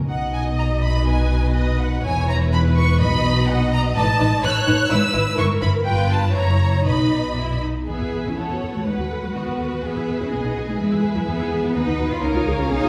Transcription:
0.09 double bass section B1, cello section B2, violin section D#4 D#5 F#5, viola section D#5
0.34 violin section G#5
0.59 violin section A#5
0.83 violin section B5
1.07 viola section B4, violin section G#5
1.55 violin section D#5
1.80 violin section F#5
2.05 double bass section E1, cello section E2, violin section E4 B4 G#5, viola section C#5
2.28 violin section A#5
2.53 viola section B4, violin section B5
2.77 violin section C#6
3.00 double bass section B1, cello section B2, violin section D#4 B5, viola section D#5
3.48 viola section D#5, violin section F#5
3.73 violin section A#5
3.96 double bass section A1, cello section A2, violin section D#4 B4 A5
4.19 double bass section A1, cello section A2, violin section D#4 B4
4.42 double bass section A1, cello section A2, violin section D#4 B4 F#6, viola section C#5
4.51 violin section E6
4.57 violin section F#6
4.66 double bass section A1, cello section A2, violin section D#4 B4
4.90 double bass section G#1, cello section G#2, violin section E4 B4 E6, viola section B4
5.13 double bass section G#1, cello section G#2, violin section E4 B4
5.37 double bass section G1, cello section G2, violin section E4 B4 C#6, viola section A#4
5.61 double bass section G1, cello section G2, violin section E4 B4 B5
5.85 double bass section G1, cello section G2, violin section F4 B4 G5, viola section B4
6.12 violin section A5
6.34 double bass section F#1, cello section F#2, violin section E4 C#5 A#5, viola section C#5
6.85 double bass section B1, cello section B2, violin section D#4 B4 B5, viola section D#5
7.37 violin section E4
7.62 violin section D#4
7.87 double bass section E2, cello section B3, viola section B3 B4, violin section G#4 E5
8.00 double bass section E2, viola section E4
8.12 double bass section E2, viola section G#4
8.25 double bass section E2, cello section C#4, viola section E4
8.37 double bass section E2, cello section B3, viola section E4 C#5, violin section A4 F#5
8.49 double bass section E2, viola section F#4
8.61 double bass section E2, viola section A4
8.73 double bass section E2, cello section A3, viola section F#4
8.85 double bass section D#2, cello section G#3, viola section D#4 B4, violin section B4
8.98 double bass section D#2, viola section F#4
9.10 double bass section D#2, viola section A4
9.23 double bass section D#2, cello section F#3, viola section F#4
9.34 double bass section D#2, cello section B3, viola section D#4, violin section F#4
9.47 double bass section D#2, viola section F#4
9.59 double bass section D#2, viola section A4
9.71 double bass section D#2, viola section F#4
9.82 double bass section E2, cello section B3, viola section B3, violin section G#4 E5
9.95 double bass section E2, viola section E4
10.07 double bass section E2, viola section G#4
10.19 double bass section E2, cello section C#4, viola section E4
10.31 double bass section B1, cello section B3, viola section B3, violin section D#5
10.44 double bass section B1, viola section D#4
10.56 double bass section B1, viola section F#4
10.67 double bass section B1, cello section A3, viola section D#4
10.78 double bass section E2, cello section G#3, viola section B3 B4, violin section E5
10.91 double bass section E2, viola section E4
11.02 double bass section E2, viola section G#4
11.14 double bass section E2, cello section F#3, viola section E4
11.25 double bass section E2, cello section B3, viola section B3, violin section G#4
11.38 double bass section E2, viola section E4
11.50 double bass section E2, viola section G#4
11.62 double bass section E2, viola section E4
11.74 double bass section D#2, viola section B3, cello section D#4, violin section B4 F#5
11.86 double bass section D#2, viola section D#4
11.98 double bass section D#2, viola section F#4
12.10 double bass section D#2, viola section D#4, cello section F4
12.21 double bass section C#2, viola section C#4 C#5, cello section D#4, violin section A#4 F5
12.34 double bass section C#2, viola section F4
12.46 double bass section C#2, viola section G#4
12.58 double bass section C#2, cello section C#4, viola section F4
12.70 double bass section B1, viola section C#4, cello section D#4, violin section G#4
12.83 double bass section B1, viola section F4

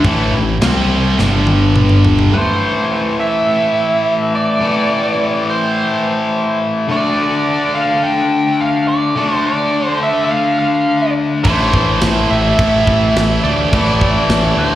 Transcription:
0.04 picked electric bass A1, overdriven electric guitar A2 E3 A3, kick, crash
0.33 picked electric bass A1, overdriven electric guitar A2 E3
0.61 picked electric bass C2, overdriven electric guitar C3 G3 C4, snare, crash
1.18 picked electric bass G1, overdriven electric guitar G2 D3 G3, snare
1.47 high tom
1.76 mid tom
1.89 mid tom
2.05 floor tom
2.19 floor tom
2.32 overdriven electric guitar A2 E3 A3, lead electric guitar C5
3.20 lead electric guitar E5
4.35 lead electric guitar D5
4.60 overdriven electric guitar A2 E3 A3
5.50 lead electric guitar C5
6.88 overdriven electric guitar D3 A3 D4, lead electric guitar D5
7.75 lead electric guitar F5
8.03 lead electric guitar G5
8.61 lead electric guitar F5
8.88 lead electric guitar D5
9.16 overdriven electric guitar D3 A3 D4
9.34 lead electric guitar C5
9.46 lead electric guitar D5
9.87 lead electric guitar C5
10.03 lead electric guitar E5
10.25 lead electric guitar E5
10.31 lead electric guitar F5
10.59 lead electric guitar F5
11.44 picked electric bass A1, overdriven electric guitar A2 E3 A3, lead electric guitar C5, kick, crash
11.73 picked electric bass A1, kick
12.01 picked electric bass A1, snare, crash
12.30 picked electric bass A1, lead electric guitar E5
12.59 picked electric bass A1, kick, crash
12.87 picked electric bass A1, kick
13.16 picked electric bass A1, snare, crash
13.44 picked electric bass D2, distorted electric guitar E3 A3, lead electric guitar D5
13.48 distorted electric guitar A2
13.72 picked electric bass A1, overdriven electric guitar A2 E3 A3, kick, crash
14.01 kick
14.29 picked electric bass A1, snare, crash
14.57 picked electric bass D2, lead electric guitar C5

